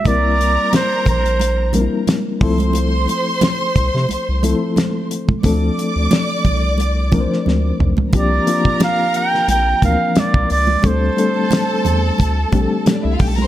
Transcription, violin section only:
X:1
M:4/4
L:1/16
Q:"Swing 16ths" 1/4=89
K:Cmix
V:1 name="Violin section"
[Bb]12 z2 [cc']2- | [cc']12- [cc']2 z2 | [dd']12- [dd']2 z2 | [Bb]12- [Bb]2 z2 |
[Aa]12 z/2 [Dd]/2 [Ee]/2 [Ff]/2 [Gg]/2 [Aa]/2 [Bb]/2 [cc']/2 |]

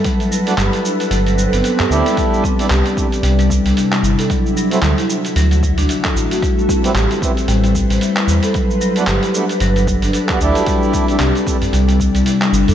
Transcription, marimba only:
X:1
M:4/4
L:1/16
Q:"Swing 16ths" 1/4=113
K:Clyd
V:1 name="Marimba" clef=bass
F, z F,2 G2 D z F, F, F, B, z G z G, | G,2 C2 G2 C2 G, G,2 G,2 G, z A | F, z F,2 A2 D z F, F, z D z A2 F | G,2 C2 G2 C2 G, G,2 G,2 G, z A |
F, z F,2 G2 D z F, F, z D z G2 F | G,2 z2 G2 C2 G, G,2 G,2 G, z A |]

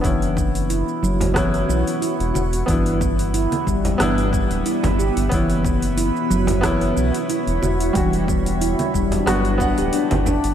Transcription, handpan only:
X:1
M:4/4
L:1/16
Q:"Swing 16ths" 1/4=91
K:none
V:1 name="Handpan"
E, z B, z E z ^F,2 E,2 B, z E z ^F2 | E, z B, z E z G,2 E,2 B, z E z G2 | E, z B, z E z ^F,2 E,2 B, z E z ^F2 | E, z B, z E z G,2 ^F, z D G D z D z |]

